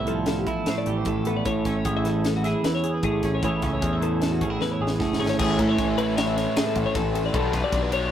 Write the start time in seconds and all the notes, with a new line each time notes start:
Already playing: C2 A2 B3 E4
0.07 F3 A4, closed hi-hat
0.26 A4, snare, closed hi-hat
0.38 G4
0.47 A1 E4 A4, kick, closed hi-hat
0.66 A2 C5, snare, closed hi-hat
0.78 D5
0.86 A1 G4, closed hi-hat
0.97 C5
1.05 A1 A2 A4, kick, closed hi-hat
1.25 B3 A4, closed hi-hat
1.36 D5
1.45 A1 A2 C#5, kick, closed hi-hat
1.65 A1 C#4 E5, kick, snare, closed hi-hat
1.76 C#5
1.85 A1 G#4, kick, closed hi-hat
1.97 E5
2.04 E3 A4, snare, closed hi-hat
2.25 A4, snare, closed hi-hat
2.36 F#4
2.44 E4 G#4, snare, closed hi-hat
2.63 E2 B4, snare, closed hi-hat
2.75 C#5
2.84 G#4, closed hi-hat
2.94 B4
3.03 A1 A2 G#4, kick, closed hi-hat
3.23 A1 C#4 G#4, kick, snare, closed hi-hat
3.35 C#5
3.42 A1 A2 E3 C#4 E4 G#4 C#5, kick, closed hi-hat
3.62 C#2 C#4 E5, kick, snare, closed hi-hat
3.74 C#5
3.82 E2 G#4, kick, closed hi-hat
3.93 E5
4.01 E3 A4, closed hi-hat
4.22 A4, snare, closed hi-hat
4.32 F#4
4.41 A1 C#4 G#4, kick, closed hi-hat
4.50 E4
4.60 E2 B4, snare
4.71 C#5
4.81 A1 G#4
4.87 snare
4.91 B4
4.99 F#1 A2 G#4, kick, snare
5.13 snare
5.20 G#1 C#4 G#4
5.26 C#5, snare
5.39 A1 A2 E3 A3 C#4 E4 G#4, kick, crash
5.59 A2 A4, kick, ride
5.69 C#5
5.78 A1, kick, snare, ride
5.88 A4
5.98 A2 E3 A3 C#4 E4 B4, ride
6.17 C#5, snare, ride
6.27 E5
6.37 C#5, snare, ride
6.56 G#4, snare, ride
6.67 A4
6.75 A1, kick, ride
6.86 C#5
6.95 A1 A4, kick, snare, ride
7.15 A4, ride
7.26 D5
7.33 B1 B2 G3 B3 D4 A4, kick, ride
7.53 B1 B4, kick, snare, ride
7.64 D5
7.72 B1, kick, snare, ride
7.83 B4
7.91 B2 G3 B3 D4 C#5, ride